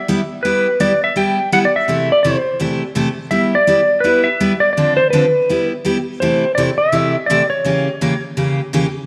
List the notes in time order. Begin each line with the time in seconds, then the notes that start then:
Already playing: E5
0.08 G3 B3 E4 G4
0.43 G3 B3 E4 G4 B4
0.80 G3 B3 E4 G4 D5
1.04 E5
1.16 G3 B3 E4 G4 G5
1.52 G3 B3 E4 G4 F#5
1.65 D5
1.76 E5
1.88 C3 E3 A3 E4 G4
2.12 D5
2.23 C3 E3 A3 E4 G4 C5
2.60 C3 E3 A3 E4 G4
2.95 C3 E3 A3 E4 G4
3.31 G3 B3 E4 G4 E5
3.55 D5
3.67 G3 B3 E4 G4
4.00 G3 B4
4.04 B3 E4 G4
4.24 E5
4.40 G3 B3 E4 G4
4.60 D5
4.73 D5
4.77 D3 F3 C4 D4 A4
4.97 C5
5.10 D3 F3 C4 D4 A4 B4
5.49 G3 B3 E4 G4
5.85 G3 B3 E4 G4
6.20 C3 E3 A3 E4 G4 C5
6.55 C3 E3 A3 E4 G4 D5
6.78 E5
6.92 C3 E3 A3 E4 G4
7.26 C3 E3 A3 D5
7.31 E4 G4
7.50 C#5
7.65 C#3 E3 A#3 C#4 G4
8.01 C#3 E3 A#3 C#4 G4
8.37 C#3 E3 A#3 C#4 G4
8.73 C#3 E3 A#3 C#4 G4